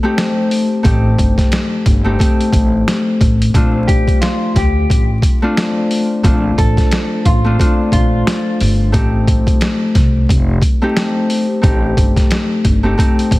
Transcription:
0.03 0.64 A3 medium
0.03 0.64 C4 medium
0.03 0.65 D#4 medium
0.03 0.65 G4 loud
0.18 snare loud
0.18 closed hi-hat medium
0.51 open hi-hat soft
0.83 1.13 A1 loud
0.83 2.04 A3 medium
0.83 2.05 C4 medium
0.83 2.05 D#4 medium
0.83 2.06 G4 loud
0.83 kick loud
0.83 closed hi-hat medium
1.18 1.35 G1 medium
1.18 kick loud
1.18 closed hi-hat medium
1.38 kick loud
1.38 snare soft
1.38 closed hi-hat soft
1.52 snare loud
1.52 closed hi-hat loud
1.86 2.14 G1 medium
1.86 kick medium
1.86 closed hi-hat medium
2.04 2.18 A3 medium
2.04 2.18 C4 medium
2.04 2.19 D#4 medium
2.04 2.20 G4 loud
2.19 3.54 A3 medium
2.19 3.55 C4 medium
2.19 3.62 D#4 medium
2.19 4.56 G4 loud
2.19 kick loud
2.19 closed hi-hat loud
2.41 closed hi-hat soft
2.53 2.81 A1 loud
2.53 kick medium
2.53 closed hi-hat medium
2.88 snare loud
2.88 closed hi-hat medium
3.21 3.49 A1 medium
3.21 kick loud
3.21 closed hi-hat medium
3.42 closed hi-hat medium
3.54 3.99 A#1 loud
3.54 5.42 A3 medium
3.54 5.42 C4 medium
3.54 5.43 D4 medium
3.54 5.44 F4 loud
3.54 kick loud
3.54 closed hi-hat medium
3.88 4.18 G4 medium
3.88 kick loud
3.88 closed hi-hat medium
4.08 kick loud
4.08 closed hi-hat soft
4.21 4.52 F4 medium
4.21 snare loud
4.21 closed hi-hat loud
4.56 4.84 D2 medium
4.56 5.07 G4 medium
4.56 kick medium
4.56 snare soft
4.56 closed hi-hat medium
4.90 5.18 A1 medium
4.90 kick loud
4.90 closed hi-hat medium
5.22 kick medium
5.22 closed hi-hat medium
5.42 6.03 A3 medium
5.42 6.04 C4 medium
5.42 6.04 D4 medium
5.42 6.04 F4 loud
5.57 snare loud
5.57 closed hi-hat medium
5.91 open hi-hat soft
6.23 6.52 A#1 loud
6.23 7.44 A3 medium
6.23 7.45 C4 medium
6.23 7.45 D4 medium
6.23 7.46 F4 medium
6.23 kick loud
6.23 closed hi-hat medium
6.58 6.74 A1 medium
6.58 7.21 A4 medium
6.58 kick loud
6.58 closed hi-hat medium
6.77 kick loud
6.77 snare soft
6.77 closed hi-hat soft
6.91 snare loud
6.91 closed hi-hat loud
7.25 7.54 A1 medium
7.25 7.89 F4 medium
7.25 kick medium
7.25 closed hi-hat medium
7.44 7.58 A3 medium
7.44 7.58 C4 medium
7.44 7.59 D4 medium
7.44 7.60 F4 loud
7.59 8.92 A3 medium
7.59 8.92 C4 medium
7.59 8.99 D4 medium
7.59 10.13 F4 loud
7.59 kick loud
7.59 closed hi-hat loud
7.92 8.21 A#1 medium
7.92 8.90 F4 medium
7.92 kick medium
7.92 closed hi-hat medium
8.27 snare loud
8.27 closed hi-hat medium
8.60 8.94 G1 medium
8.60 open hi-hat soft
8.92 9.38 A1 loud
8.92 10.81 A3 medium
8.92 10.82 C4 medium
8.92 10.82 D#4 medium
8.92 10.83 G4 medium
8.92 kick loud
8.92 closed hi-hat medium
9.28 kick loud
9.28 closed hi-hat medium
9.47 kick loud
9.47 closed hi-hat medium
9.61 snare loud
9.61 closed hi-hat loud
9.95 10.23 C2 medium
9.95 kick medium
9.95 snare soft
9.95 closed hi-hat medium
10.29 10.57 F1 medium
10.29 kick loud
10.29 closed hi-hat loud
10.62 kick medium
10.62 closed hi-hat medium
10.82 11.43 A3 medium
10.82 11.43 C4 medium
10.82 11.43 D#4 medium
10.82 11.44 G4 loud
10.97 snare loud
10.97 closed hi-hat medium
11.30 open hi-hat soft
11.62 11.92 A1 loud
11.62 12.83 A3 medium
11.62 12.83 C4 medium
11.62 12.84 D#4 medium
11.62 12.85 G4 loud
11.62 kick loud
11.62 closed hi-hat medium
11.97 12.14 G1 medium
11.97 kick loud
11.97 closed hi-hat medium
12.16 kick loud
12.16 snare soft
12.16 closed hi-hat medium
12.31 snare loud
12.31 closed hi-hat loud
12.65 12.93 G1 medium
12.65 kick medium
12.65 closed hi-hat medium
12.83 12.96 A3 medium
12.83 12.97 C4 medium
12.83 12.98 D#4 medium
12.83 12.98 G4 loud
12.97 13.39 A3 medium
12.97 13.39 C4 medium
12.97 13.39 D#4 medium
12.97 13.39 G4 loud
12.97 kick loud
12.97 closed hi-hat medium
13.19 closed hi-hat soft
13.31 13.39 A1 loud
13.31 kick medium
13.31 closed hi-hat medium

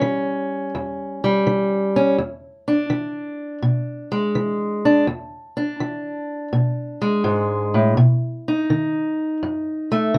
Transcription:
0.00 0.69 E3 medium
0.00 1.23 G3 medium
0.00 1.95 C#4 medium
0.75 1.42 E2 medium
1.24 2.19 G3 medium
1.47 2.14 E3 medium
1.96 2.16 C#4 medium
2.18 2.86 E2 medium
2.68 4.84 D4 medium
2.90 3.58 E3 medium
3.62 4.30 B2 medium
4.12 5.05 G#3 medium
4.35 5.03 E3 medium
4.85 5.05 D4 medium
5.07 5.75 E2 medium
5.57 7.94 D4 medium
5.80 6.48 E3 medium
6.53 7.20 B2 medium
7.01 7.94 G#3 medium
7.24 7.73 G#2 medium
7.74 7.97 A2 medium
7.97 8.64 B2 medium
8.48 10.18 D#4 medium
8.70 9.37 D#3 medium
9.43 10.09 F#2 medium
9.92 10.18 A3 medium
10.14 10.18 D#3 medium

